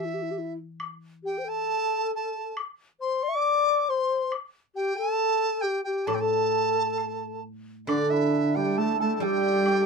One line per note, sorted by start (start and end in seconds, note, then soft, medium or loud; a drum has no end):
0.00 1.69 E3 medium
0.00 0.53 E5 medium
0.05 0.15 E4 soft
0.14 0.24 G4 soft
0.22 0.33 E4 soft
0.31 0.40 G4 soft
0.38 0.58 E4 medium
0.80 high woodblock medium
1.24 1.40 G4 medium
1.24 1.50 G5 medium
1.38 1.47 C5 soft
1.45 2.57 A4 medium
1.45 2.14 A5 loud
2.15 2.55 A5 medium
2.57 high woodblock medium
3.01 3.25 C5 medium
3.01 3.25 C6 medium
3.23 3.30 D5 medium
3.23 3.91 D6 medium
3.29 3.37 E5 medium
3.35 3.90 D5 medium
3.89 4.32 C5 medium
3.89 4.33 C6 medium
4.32 high woodblock medium
4.75 4.96 G4 medium
4.75 4.98 G5 medium
4.97 5.65 A4 medium
4.97 5.63 A5 loud
5.61 5.85 G4 medium
5.61 5.84 G5 medium
5.84 6.09 G4 medium
5.84 6.08 G5 medium
6.07 8.78 A2 medium
6.07 6.21 A4 medium
6.07 6.16 A5 medium
6.07 high woodblock medium
6.15 6.22 G5 medium
6.21 7.40 A4 medium
6.21 7.43 A5 loud
6.98 low woodblock soft
7.87 9.22 D3 medium
7.87 8.58 D3 medium
7.87 9.86 D4 medium
7.87 8.58 D4 medium
7.87 8.12 D5 medium
7.87 high woodblock medium
8.10 9.86 E4 medium
8.10 8.57 E5 medium
8.55 8.79 G3 medium
8.55 9.22 G4 medium
8.55 8.81 G4 medium
8.55 8.79 G5 medium
8.78 9.00 A3 medium
8.78 9.00 A4 medium
8.78 9.00 A5 medium
9.00 9.21 A3 medium
9.00 9.81 A4 medium
9.00 9.26 A4 medium
9.00 9.15 A5 medium
9.15 9.24 A5 medium
9.20 9.86 G3 medium
9.20 9.29 G4 medium
9.20 9.86 G4 medium
9.20 9.86 G5 loud
9.29 9.37 G4 medium
9.37 9.46 G4 medium
9.46 9.52 G4 medium
9.52 9.59 G4 medium
9.60 9.67 G4 medium
9.66 9.74 G4 medium
9.66 high woodblock soft
9.75 9.86 G4 medium
9.81 9.86 A4 soft